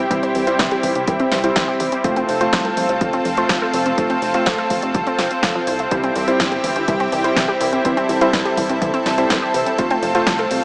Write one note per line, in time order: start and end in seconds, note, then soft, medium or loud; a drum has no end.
0.00 9.74 C4 medium
0.00 2.00 E4 medium
0.00 2.00 G4 medium
0.11 0.30 C2 medium
0.11 0.22 E3 medium
0.11 0.44 G3 medium
0.11 0.44 C4 medium
0.11 0.44 E4 medium
0.11 0.44 C5 medium
0.11 kick loud
0.11 closed hi-hat medium
0.23 0.33 C4 loud
0.23 closed hi-hat soft
0.35 0.54 C2 medium
0.35 0.41 E3 medium
0.35 open hi-hat loud
0.47 1.41 G3 medium
0.47 1.41 C4 medium
0.47 1.41 E4 medium
0.47 0.53 E4 loud
0.47 1.41 C5 loud
0.47 closed hi-hat soft
0.59 0.69 C2 medium
0.59 0.65 E3 loud
0.59 kick loud
0.59 snare loud
0.59 closed hi-hat medium
0.71 0.82 G4 loud
0.71 closed hi-hat soft
0.83 0.93 C2 medium
0.83 0.90 E3 medium
0.83 kick medium
0.83 open hi-hat loud
0.95 1.05 C2 medium
0.95 1.06 C4 medium
0.95 closed hi-hat soft
1.07 1.17 C2 loud
1.07 1.19 E3 medium
1.07 kick loud
1.07 closed hi-hat medium
1.20 1.30 C4 loud
1.20 closed hi-hat soft
1.32 1.51 C2 medium
1.32 1.38 E3 medium
1.32 snare medium
1.32 open hi-hat loud
1.44 2.01 G3 medium
1.44 2.01 C4 medium
1.44 2.02 E4 medium
1.44 1.50 E4 loud
1.44 2.01 C5 medium
1.44 closed hi-hat soft
1.56 1.66 C2 medium
1.56 1.62 E3 loud
1.56 kick loud
1.56 snare loud
1.56 closed hi-hat medium
1.68 1.78 G4 loud
1.80 1.90 C2 medium
1.80 1.86 E3 medium
1.80 open hi-hat loud
1.92 2.03 C4 medium
1.92 closed hi-hat medium
2.04 2.24 F1 medium
2.04 2.16 F3 medium
2.04 2.38 A3 medium
2.04 2.38 C4 medium
2.04 2.38 F4 medium
2.04 5.88 F4 medium
2.04 5.88 A4 medium
2.04 2.38 C5 medium
2.04 kick loud
2.04 closed hi-hat medium
2.16 2.27 C4 loud
2.16 closed hi-hat soft
2.29 2.48 F1 loud
2.29 2.35 F3 medium
2.29 open hi-hat loud
2.41 3.35 A3 medium
2.41 3.35 C4 medium
2.41 3.35 F4 medium
2.41 2.47 F4 loud
2.41 3.35 C5 loud
2.41 closed hi-hat soft
2.53 2.72 C2 medium
2.53 2.59 F3 loud
2.53 kick loud
2.53 snare loud
2.53 closed hi-hat medium
2.65 2.75 A4 loud
2.65 closed hi-hat soft
2.77 2.87 C2 medium
2.77 2.83 F3 medium
2.77 open hi-hat loud
2.89 2.99 C2 loud
2.89 2.99 C4 medium
2.89 closed hi-hat soft
3.01 3.21 F1 loud
3.01 3.13 F3 medium
3.01 kick loud
3.01 closed hi-hat medium
3.13 3.24 C4 loud
3.13 closed hi-hat soft
3.25 3.45 F1 medium
3.25 3.31 F3 medium
3.25 open hi-hat loud
3.37 3.95 A3 medium
3.37 3.95 C4 medium
3.37 3.95 F4 medium
3.37 3.44 F4 loud
3.37 3.95 C5 loud
3.37 closed hi-hat soft
3.49 3.59 F1 loud
3.49 3.56 F3 loud
3.49 kick loud
3.49 snare loud
3.49 closed hi-hat medium
3.62 3.72 A4 loud
3.74 3.93 F1 loud
3.74 3.80 F3 medium
3.74 open hi-hat loud
3.86 3.96 C4 medium
3.86 closed hi-hat soft
3.98 4.17 F1 medium
3.98 4.10 F3 medium
3.98 4.31 A3 medium
3.98 4.31 C4 medium
3.98 4.31 F4 medium
3.98 4.31 C5 medium
3.98 kick loud
3.98 closed hi-hat medium
4.10 4.20 C4 loud
4.10 closed hi-hat soft
4.22 4.42 F1 medium
4.22 4.28 F3 medium
4.22 open hi-hat loud
4.34 5.28 A3 medium
4.34 5.28 C4 medium
4.34 5.28 F4 medium
4.34 4.40 F4 loud
4.34 5.28 C5 loud
4.34 closed hi-hat soft
4.46 4.56 F1 medium
4.46 4.53 F3 loud
4.46 kick loud
4.46 snare loud
4.46 closed hi-hat medium
4.58 4.69 A4 loud
4.58 closed hi-hat soft
4.70 4.80 F1 medium
4.70 4.77 F3 medium
4.70 kick medium
4.70 open hi-hat loud
4.82 4.92 F1 medium
4.82 4.93 C4 medium
4.82 closed hi-hat soft
4.95 5.04 C2 loud
4.95 5.06 F3 medium
4.95 kick loud
4.95 closed hi-hat medium
5.07 5.17 C4 loud
5.07 closed hi-hat soft
5.19 5.29 F1 medium
5.19 5.25 F4 medium
5.19 snare medium
5.19 open hi-hat loud
5.31 5.41 C4 medium
5.31 closed hi-hat soft
5.43 5.53 F1 loud
5.43 5.53 F5 medium
5.43 kick loud
5.43 snare loud
5.43 closed hi-hat medium
5.55 5.67 F3 loud
5.67 5.87 C2 loud
5.67 5.78 C5 medium
5.67 open hi-hat loud
5.79 5.90 A3 medium
5.79 closed hi-hat soft
5.91 6.11 C2 medium
5.91 6.03 E3 medium
5.91 6.25 G3 medium
5.91 6.25 C4 medium
5.91 9.75 E4 medium
5.91 6.25 E4 medium
5.91 7.83 G4 medium
5.91 6.25 C5 medium
5.91 kick loud
5.91 closed hi-hat medium
6.03 6.14 C4 loud
6.03 closed hi-hat soft
6.16 6.35 C2 loud
6.16 6.22 E3 medium
6.16 open hi-hat loud
6.28 7.22 G3 medium
6.28 7.22 C4 medium
6.28 6.34 E4 loud
6.28 7.22 E4 medium
6.28 7.22 C5 loud
6.28 closed hi-hat soft
6.40 6.59 G1 medium
6.40 6.46 E3 loud
6.40 kick loud
6.40 snare loud
6.40 closed hi-hat medium
6.52 6.62 G4 loud
6.52 closed hi-hat soft
6.64 6.74 G1 medium
6.64 6.70 E3 medium
6.64 open hi-hat loud
6.76 6.86 G1 loud
6.76 6.86 C4 medium
6.76 closed hi-hat soft
6.88 7.08 C2 loud
6.88 7.00 E3 medium
6.88 kick loud
6.88 closed hi-hat medium
7.00 7.10 C4 loud
7.00 closed hi-hat soft
7.12 7.32 C2 loud
7.12 7.18 E3 medium
7.12 open hi-hat loud
7.24 7.82 G3 medium
7.24 7.82 C4 medium
7.24 7.31 E4 loud
7.24 7.82 E4 medium
7.24 7.82 C5 medium
7.24 closed hi-hat soft
7.36 7.46 C2 loud
7.36 7.43 E3 loud
7.36 kick loud
7.36 snare loud
7.36 closed hi-hat medium
7.48 7.59 G4 loud
7.61 7.80 C2 loud
7.61 7.67 E3 medium
7.61 open hi-hat loud
7.73 7.83 C4 medium
7.73 closed hi-hat soft
7.85 8.04 C2 medium
7.85 7.96 E3 medium
7.85 8.18 G3 medium
7.85 8.18 C4 medium
7.85 8.18 E4 medium
7.85 10.64 A4 medium
7.85 8.18 C5 medium
7.85 kick loud
7.85 closed hi-hat medium
7.97 8.07 C4 loud
7.97 closed hi-hat soft
8.09 8.29 C2 medium
8.09 8.15 E3 medium
8.09 open hi-hat loud
8.21 9.15 G3 medium
8.21 9.15 C4 medium
8.21 8.27 E4 loud
8.21 9.15 E4 medium
8.21 9.15 C5 loud
8.21 closed hi-hat soft
8.33 8.43 C2 medium
8.33 8.39 E3 loud
8.33 kick loud
8.33 snare loud
8.33 closed hi-hat medium
8.45 8.56 G4 loud
8.45 closed hi-hat soft
8.57 8.67 C2 medium
8.57 8.64 E3 medium
8.57 kick medium
8.57 open hi-hat loud
8.70 8.79 C2 medium
8.70 8.80 C4 medium
8.70 closed hi-hat soft
8.82 8.92 C2 loud
8.82 8.93 E3 medium
8.82 kick loud
8.82 closed hi-hat medium
8.94 9.04 C4 loud
8.94 closed hi-hat soft
9.06 9.25 C2 medium
9.06 9.12 E3 medium
9.06 snare medium
9.06 open hi-hat loud
9.18 9.76 G3 medium
9.18 9.76 C4 medium
9.18 9.76 E4 medium
9.18 9.24 E4 loud
9.18 9.76 C5 medium
9.18 closed hi-hat soft
9.30 9.40 C2 loud
9.30 9.36 E3 loud
9.30 kick loud
9.30 snare loud
9.30 closed hi-hat medium
9.42 9.52 G4 loud
9.54 9.64 C2 medium
9.54 9.61 E3 medium
9.54 open hi-hat loud
9.66 9.77 C4 medium
9.66 closed hi-hat soft
9.78 9.98 F1 loud
9.78 9.90 F3 medium
9.78 10.12 A3 medium
9.78 10.64 C4 medium
9.78 10.12 C4 medium
9.78 10.64 F4 medium
9.78 10.12 F4 medium
9.78 10.12 C5 medium
9.78 kick loud
9.78 closed hi-hat medium
9.90 10.01 C4 loud
9.90 closed hi-hat soft
10.03 10.22 F1 loud
10.03 10.09 F3 medium
10.03 open hi-hat loud
10.15 10.64 A3 loud
10.15 10.64 C4 medium
10.15 10.64 F4 medium
10.15 10.21 F4 loud
10.15 10.64 C5 loud
10.15 closed hi-hat medium
10.27 10.46 C2 medium
10.27 10.33 F3 loud
10.27 kick loud
10.27 snare loud
10.27 closed hi-hat medium
10.39 10.49 A4 loud
10.39 closed hi-hat soft
10.51 10.61 C2 medium
10.51 10.57 F3 medium
10.51 open hi-hat loud